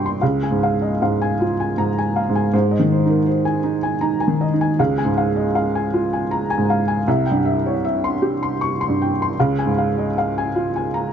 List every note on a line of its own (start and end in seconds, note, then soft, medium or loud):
0.00 0.17 C2 medium
0.00 0.23 G2 soft
0.00 0.24 G4 soft
0.00 0.23 C#5 soft
0.00 0.24 E5 medium
0.00 0.24 G5 medium
0.00 0.06 C6 medium
0.00 0.23 C#6 medium
0.06 0.23 C6 soft
0.21 2.50 C#2 medium
0.21 0.53 F5 soft
0.43 0.74 G#5 soft
0.51 0.91 G#2 soft
0.63 0.93 F5 soft
0.82 1.01 D#5 soft
1.02 1.42 G#2 medium
1.02 1.32 F5 medium
1.22 1.51 G#5 medium
1.41 1.71 F4 soft
1.60 1.90 G#5 soft
1.78 2.18 G#2 soft
1.78 1.97 A#5 medium
1.98 2.28 G#5 medium
2.16 2.46 F5 medium
2.29 2.52 G#2 soft
2.35 2.54 G#5 medium
2.53 4.76 G#2 medium
2.53 2.83 C5 medium
2.71 3.02 D#5 soft
2.79 3.19 D#3 soft
2.92 3.21 C5 soft
3.05 3.44 D#4 soft
3.05 3.28 A#4 soft
3.27 3.58 C5 medium
3.45 3.77 G#5 medium
3.64 3.95 D#4 soft
3.83 4.14 G#5 medium
4.01 4.43 D#4 soft
4.01 4.22 A#5 medium
4.20 4.52 G#5 medium
4.28 4.69 D#3 medium
4.41 4.71 D#5 medium
4.53 4.79 D#4 soft
4.61 4.80 G#5 medium
4.79 7.02 C#2 medium
4.79 5.09 F5 medium
4.98 5.28 G#5 medium
5.05 5.45 G#2 soft
5.17 5.47 F5 medium
5.36 5.55 D#5 soft
5.55 5.85 F5 medium
5.75 6.05 G#5 medium
5.94 6.23 F4 medium
6.13 6.43 G#5 medium
6.31 6.50 A#5 medium
6.50 6.80 G#5 medium
6.58 6.97 G#2 soft
6.70 7.00 F5 medium
6.88 7.07 G#5 medium
7.07 9.33 C2 medium
7.07 7.38 E5 medium
7.26 7.56 G5 medium
7.31 7.72 G2 soft
7.45 7.75 E5 medium
7.66 7.84 C#5 soft
7.85 8.14 E5 medium
8.04 8.34 C6 medium
8.22 8.53 G4 soft
8.43 8.73 C6 medium
8.61 8.80 C#6 medium
8.81 9.10 C6 medium
8.88 9.27 G2 soft
9.02 9.30 G5 medium
9.22 9.39 C6 medium
9.40 11.13 C#2 medium
9.40 9.69 F5 medium
9.59 9.88 G#5 medium
9.66 10.06 G#2 soft
9.78 10.08 F5 soft
9.98 10.16 D#5 soft
10.18 10.48 F5 medium
10.38 10.68 G#5 medium
10.56 10.87 F4 soft
10.76 11.07 G#5 soft
10.94 11.13 A#5 medium